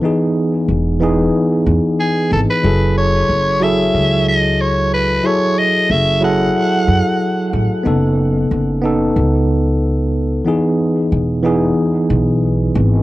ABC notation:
X:1
M:4/4
L:1/16
Q:"Swing 16ths" 1/4=92
K:F#dor
V:1 name="Soprano saxophone"
z12 G2 A B- | B2 c4 e4 d2 c2 B2 | c2 d2 e2 f8 z2 | z16 |
z16 |]
V:2 name="Tine electric piano"
[E,B,DG]6 [E,B,DG]8- [E,B,DG]2 | [F,EGA]6 [F,EGA]8- [F,EGA]2 | [F,EGA]6 [F,EGA]8- [F,EGA]2 | [B,DA]6 [B,DA]8- [B,DA]2 |
[E,B,DG]6 [E,B,DG]8- [E,B,DG]2 |]
V:3 name="Upright bass" clef=bass
z4 E,,,4 z2 E,,2 z2 G,,,2 | F,,,4 F,,,4 C,,8 | z4 F,,,4 z2 F,,2 z2 A,,,2 | F,,,4 F,,,4 C,,8 |
z4 E,,,4 z2 B,,,4 G,,,2 |]